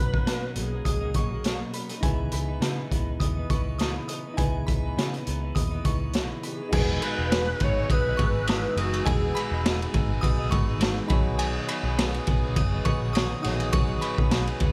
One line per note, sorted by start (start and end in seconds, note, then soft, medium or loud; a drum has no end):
0.00 0.21 B1 medium
0.00 0.14 B2 medium
0.00 0.14 F#3 medium
0.00 1.98 C#4 medium
0.00 0.12 D#4 medium
0.00 1.99 D#4 medium
0.00 2.00 F#4 medium
0.00 0.53 B4 loud
0.00 0.53 B5 medium
0.13 0.27 A#3 soft
0.13 0.27 D#4 medium
0.13 kick medium
0.17 0.27 F#3 soft
0.26 0.58 B2 medium
0.26 0.43 B2 medium
0.26 0.44 F#3 medium
0.26 0.44 A#3 medium
0.26 0.43 D#4 medium
0.26 snare loud
0.26 closed hi-hat medium
0.44 0.58 A#3 soft
0.44 0.57 D#4 medium
0.48 0.56 F#3 soft
0.56 0.80 B1 medium
0.56 0.73 B2 medium
0.56 0.73 F#3 medium
0.56 0.73 A#3 medium
0.56 1.71 G#4 medium
0.56 closed hi-hat medium
0.60 0.71 D#4 medium
0.72 1.04 F#3 soft
0.72 1.01 A#3 soft
0.72 0.99 D#4 soft
0.85 1.14 C#2 medium
0.85 1.13 D#6 medium
0.85 kick medium
0.85 closed hi-hat medium
1.01 1.16 A#3 soft
1.01 1.14 D#4 medium
1.05 1.15 F#3 soft
1.14 1.62 B1 medium
1.14 1.31 B2 medium
1.14 1.32 F#3 medium
1.14 1.32 A#3 medium
1.14 1.31 C#6 medium
1.14 kick medium
1.14 closed hi-hat medium
1.19 1.29 D#4 medium
1.31 1.45 F#3 soft
1.31 1.45 A#3 soft
1.31 1.44 D#4 soft
1.44 1.90 B2 medium
1.44 1.91 F#3 medium
1.44 1.90 A#3 medium
1.44 1.88 D#4 medium
1.44 snare medium
1.44 closed hi-hat medium
1.73 1.89 B5 medium
1.73 closed hi-hat medium
1.89 2.04 A#3 soft
1.89 2.03 D#4 soft
1.89 closed hi-hat soft
1.94 2.04 F#3 soft
2.01 2.27 C#2 medium
2.01 2.49 C#3 medium
2.01 2.49 E3 medium
2.01 4.33 D#4 medium
2.01 4.34 E4 medium
2.01 4.34 G#4 medium
2.01 2.31 G#5 medium
2.01 kick loud
2.01 closed hi-hat medium
2.05 2.49 B3 medium
2.05 2.47 D#4 medium
2.05 4.35 B4 medium
2.32 2.56 C#2 loud
2.32 2.88 B5 medium
2.32 closed hi-hat medium
2.48 2.61 E3 soft
2.48 2.62 B3 medium
2.48 2.62 D#4 medium
2.60 2.85 C#3 medium
2.60 2.78 C#3 medium
2.60 2.78 E3 medium
2.60 2.79 B3 medium
2.60 2.77 D#4 medium
2.60 snare loud
2.60 closed hi-hat medium
2.79 2.92 E3 medium
2.79 2.93 B3 medium
2.79 2.92 D#4 medium
2.92 3.15 C#2 medium
2.92 3.37 C#3 medium
2.92 3.38 E3 medium
2.92 3.38 B3 medium
2.92 3.36 D#4 medium
2.92 kick medium
2.92 closed hi-hat medium
3.20 3.44 D#2 medium
3.20 3.48 D#6 medium
3.20 kick medium
3.20 closed hi-hat medium
3.37 3.51 B3 medium
3.37 3.50 D#4 medium
3.41 3.51 E3 soft
3.50 3.97 C#2 medium
3.50 3.66 C#3 medium
3.50 3.67 E3 medium
3.50 3.67 B3 medium
3.50 3.66 C#6 medium
3.50 kick medium
3.50 closed hi-hat medium
3.55 3.65 D#4 medium
3.67 3.79 E3 soft
3.67 3.80 B3 soft
3.67 3.80 D#4 soft
3.78 4.25 C#3 medium
3.78 4.25 E3 medium
3.78 4.26 B3 medium
3.78 3.94 D#6 medium
3.78 snare loud
3.78 closed hi-hat medium
3.83 4.24 D#4 loud
4.08 4.24 D#6 medium
4.08 closed hi-hat medium
4.25 4.39 B3 soft
4.25 4.38 D#4 soft
4.29 4.38 E3 soft
4.34 4.83 C#3 medium
4.34 6.66 D#4 medium
4.34 6.68 E4 medium
4.34 4.65 G#5 medium
4.38 4.62 C#2 medium
4.38 4.84 E3 medium
4.38 4.84 B3 medium
4.38 4.82 D#4 medium
4.38 6.68 G#4 medium
4.38 6.69 B4 medium
4.38 kick loud
4.38 closed hi-hat medium
4.67 4.91 C#2 medium
4.67 5.22 B5 medium
4.67 kick medium
4.67 closed hi-hat medium
4.83 4.97 E3 soft
4.83 4.98 B3 medium
4.83 4.97 D#4 medium
4.97 5.21 C#3 medium
4.97 5.13 C#3 medium
4.97 5.13 E3 medium
4.97 5.13 B3 medium
4.97 5.11 D#4 medium
4.97 snare loud
4.97 closed hi-hat medium
5.13 5.26 B3 medium
5.13 5.26 D#4 medium
5.13 closed hi-hat soft
5.17 5.25 E3 soft
5.25 5.50 C#2 medium
5.25 5.42 C#3 medium
5.25 5.42 E3 medium
5.25 5.43 B3 medium
5.25 5.42 D#4 medium
5.25 closed hi-hat medium
5.43 5.74 E3 soft
5.43 5.72 B3 medium
5.43 5.70 D#4 medium
5.55 5.79 D#2 medium
5.55 5.84 D#6 medium
5.55 kick medium
5.55 closed hi-hat medium
5.71 5.86 B3 soft
5.71 5.84 D#4 medium
5.75 5.85 E3 soft
5.84 6.32 C#2 medium
5.84 6.00 C#3 medium
5.84 6.01 E3 medium
5.84 6.01 B3 medium
5.84 5.99 D#4 medium
5.84 6.00 C#6 medium
5.84 kick medium
5.84 closed hi-hat medium
6.00 6.15 B3 soft
6.00 6.13 D#4 soft
6.04 6.14 E3 soft
6.13 6.59 C#3 medium
6.13 6.60 E3 medium
6.13 6.59 B3 medium
6.13 6.57 D#4 medium
6.13 snare loud
6.13 closed hi-hat medium
6.43 7.04 G#4 medium
6.43 6.59 B5 medium
6.43 closed hi-hat medium
6.58 6.72 E3 soft
6.58 6.73 B3 soft
6.58 6.72 D#4 medium
6.69 6.96 E1 loud
6.69 9.00 D#4 medium
6.69 11.07 D#4 medium
6.69 9.01 F#4 medium
6.69 9.02 G#4 medium
6.69 7.00 G#5 medium
6.69 crash loud
6.73 7.02 E3 medium
6.73 7.01 G#3 medium
6.73 7.02 B3 medium
6.73 7.03 D#4 loud
6.73 7.03 G#4 medium
6.73 9.03 B4 medium
6.73 11.07 G#5 medium
6.73 11.07 E6 medium
6.73 kick loud
7.02 7.18 G#3 medium
7.02 7.19 B3 medium
7.02 7.18 D#4 medium
7.02 7.16 G#4 medium
7.02 7.65 B4 loud
7.02 7.57 B5 medium
7.02 ride medium
7.17 7.52 E1 medium
7.17 7.32 D#4 soft
7.17 7.31 G#4 medium
7.21 7.31 B3 soft
7.31 7.47 E3 medium
7.31 7.48 G#3 medium
7.31 7.48 B3 medium
7.31 7.48 D#4 medium
7.31 7.46 G#4 medium
7.31 snare loud
7.31 ride medium
7.47 7.60 G#4 medium
7.60 7.84 G#1 medium
7.60 7.76 G#3 medium
7.60 7.77 B3 medium
7.60 7.78 D#4 medium
7.60 7.94 C#5 loud
7.60 kick medium
7.60 ride medium
7.64 7.76 G#4 medium
7.77 8.08 B3 soft
7.77 8.07 D#4 medium
7.77 8.05 G#4 medium
7.90 8.13 B1 medium
7.90 8.81 B4 loud
7.90 8.18 D#6 medium
7.90 kick medium
7.90 ride medium
8.06 8.19 B3 medium
8.06 8.20 D#4 medium
8.06 8.19 G#4 medium
8.17 8.66 G#1 medium
8.17 8.35 G#3 medium
8.17 8.36 B3 medium
8.17 8.33 C#6 medium
8.17 kick medium
8.17 ride medium
8.21 8.36 D#4 medium
8.21 8.34 G#4 medium
8.35 8.49 D#4 medium
8.35 8.48 G#4 medium
8.40 8.49 B3 soft
8.47 9.06 E3 medium
8.47 9.07 G#3 medium
8.47 9.08 B3 medium
8.47 9.08 D#4 medium
8.47 8.63 D#6 medium
8.47 snare loud
8.47 ride medium
8.51 9.09 G#4 medium
8.77 9.00 F#1 medium
8.77 9.07 F#4 loud
8.77 8.93 D#6 medium
8.77 ride medium
8.93 ride soft
9.05 9.30 E1 loud
9.05 9.36 E3 medium
9.05 9.34 G#3 medium
9.05 9.35 B3 medium
9.05 10.20 D#4 medium
9.05 9.37 D#4 loud
9.05 10.21 F#4 medium
9.05 10.22 G#4 medium
9.05 9.34 G#5 loud
9.05 kick loud
9.05 ride medium
9.10 9.37 G#4 medium
9.10 9.63 G#4 medium
9.10 10.23 B4 medium
9.35 9.51 G#3 medium
9.35 9.52 B3 medium
9.35 9.52 D#4 medium
9.35 9.90 B5 medium
9.35 ride medium
9.39 9.50 G#4 medium
9.51 9.85 E1 loud
9.51 9.65 D#4 medium
9.51 9.64 G#4 medium
9.55 9.64 B3 soft
9.65 9.81 E3 medium
9.65 9.81 G#3 medium
9.65 9.81 B3 loud
9.65 9.80 D#4 loud
9.65 9.78 G#4 medium
9.65 snare loud
9.65 ride medium
9.79 9.94 D#4 medium
9.79 9.93 G#4 medium
9.79 ride soft
9.83 9.93 B3 medium
9.92 10.17 G#1 medium
9.92 10.09 G#3 medium
9.92 10.10 B3 medium
9.92 10.09 D#4 medium
9.92 kick medium
9.92 ride medium
9.96 10.07 G#4 medium
10.08 10.40 B3 medium
10.08 10.38 D#4 medium
10.08 10.36 G#4 medium
10.21 10.47 B1 loud
10.21 11.06 D#4 medium
10.21 11.08 F#4 medium
10.21 11.10 G#4 medium
10.21 11.11 B4 medium
10.21 10.50 D#6 loud
10.21 kick medium
10.21 ride medium
10.37 10.51 B3 medium
10.37 10.51 D#4 medium
10.37 10.51 G#4 medium
10.49 10.99 G#1 medium
10.49 10.67 G#3 medium
10.49 10.68 B3 medium
10.49 10.67 D#4 medium
10.49 10.67 C#6 medium
10.49 kick loud
10.49 ride medium
10.53 10.64 G#4 medium
10.66 10.79 B3 soft
10.66 10.80 D#4 medium
10.66 10.80 G#4 medium
10.79 11.09 E3 loud
10.79 11.10 G#3 loud
10.79 11.10 B3 loud
10.79 11.10 D#4 loud
10.79 11.11 G#4 loud
10.79 snare loud
10.79 ride medium
11.07 11.57 B1 loud
11.07 11.68 B2 medium
11.07 11.98 D#3 medium
11.07 11.67 F#3 loud
11.07 11.70 B3 loud
11.07 13.38 D#4 medium
11.07 13.39 F#4 medium
11.07 13.40 G#4 medium
11.07 14.72 B4 medium
11.07 13.41 G#5 medium
11.07 11.25 B5 medium
11.07 14.72 D#6 medium
11.07 kick loud
11.07 ride medium
11.12 11.70 D#4 loud
11.12 11.71 G#4 loud
11.12 13.41 C#5 medium
11.39 11.67 G#5 medium
11.39 ride medium
11.68 11.85 F#3 medium
11.68 11.85 B3 medium
11.68 11.85 D#4 medium
11.68 12.24 B5 medium
11.68 ride medium
11.72 11.83 G#4 medium
11.84 12.18 B1 loud
11.84 11.98 B3 medium
11.84 11.98 D#4 medium
11.84 11.98 G#4 medium
11.88 11.97 F#3 medium
11.97 12.14 B2 medium
11.97 12.14 D#3 loud
11.97 12.14 F#3 loud
11.97 12.15 B3 loud
11.97 12.14 D#4 loud
11.97 12.12 G#4 loud
11.97 snare loud
11.97 ride medium
12.13 12.26 F#3 soft
12.13 12.27 B3 medium
12.13 12.28 D#4 medium
12.13 12.27 G#4 medium
12.13 ride soft
12.27 12.58 B1 loud
12.27 12.43 F#3 medium
12.27 12.44 B3 medium
12.27 12.44 D#4 medium
12.27 kick loud
12.27 ride medium
12.31 12.43 G#4 medium
12.44 12.75 F#3 medium
12.44 12.74 B3 medium
12.44 12.73 D#4 medium
12.44 12.71 G#4 medium
12.56 12.80 F#1 loud
12.56 12.84 D#6 medium
12.56 kick medium
12.56 ride medium
12.72 12.84 F#3 medium
12.72 12.85 B3 medium
12.72 12.86 D#4 medium
12.72 12.85 G#4 medium
12.85 13.33 A#1 loud
12.85 13.01 F#3 medium
12.85 13.02 B3 medium
12.85 13.02 D#4 medium
12.85 13.00 C#6 medium
12.85 kick loud
12.85 ride medium
12.89 13.00 G#4 medium
13.01 13.16 B3 medium
13.01 13.16 D#4 medium
13.01 13.15 G#4 medium
13.06 13.15 F#3 soft
13.13 13.71 B2 medium
13.13 13.73 D#3 loud
13.13 13.73 F#3 loud
13.13 13.74 B3 loud
13.13 13.29 D#6 medium
13.13 snare loud
13.13 ride medium
13.18 13.75 D#4 loud
13.18 13.75 G#4 loud
13.42 13.68 A#1 medium
13.42 14.72 D#4 medium
13.42 14.72 F#4 medium
13.42 14.72 G#4 medium
13.42 14.72 G#5 medium
13.42 13.59 D#6 medium
13.42 snare soft
13.42 ride medium
13.47 14.72 C#5 medium
13.60 ride soft
13.73 13.96 B1 loud
13.73 14.02 B2 loud
13.73 14.02 D#3 loud
13.73 14.01 F#3 loud
13.73 14.02 B3 loud
13.73 14.03 D#4 loud
13.73 14.03 G#4 loud
13.73 14.00 C#6 loud
13.73 kick loud
13.73 ride medium
14.01 14.18 F#3 medium
14.01 14.19 B3 medium
14.01 14.18 D#4 medium
14.01 14.56 B5 medium
14.01 ride medium
14.05 14.16 G#4 medium
14.17 14.52 B1 medium
14.17 14.31 B3 medium
14.17 14.32 D#4 medium
14.17 14.31 G#4 medium
14.17 kick loud
14.22 14.31 F#3 medium
14.31 14.47 B2 medium
14.31 14.47 D#3 medium
14.31 14.48 F#3 loud
14.31 14.48 B3 loud
14.31 14.48 D#4 loud
14.31 14.46 G#4 loud
14.31 snare loud
14.31 ride medium
14.47 14.61 B3 medium
14.47 14.61 D#4 medium
14.47 14.60 G#4 medium
14.47 ride soft
14.52 14.59 F#3 medium
14.60 14.72 D#2 loud
14.60 14.72 F#3 medium
14.60 14.72 B3 medium
14.60 14.72 D#4 medium
14.60 kick medium
14.60 ride medium
14.64 14.72 G#4 medium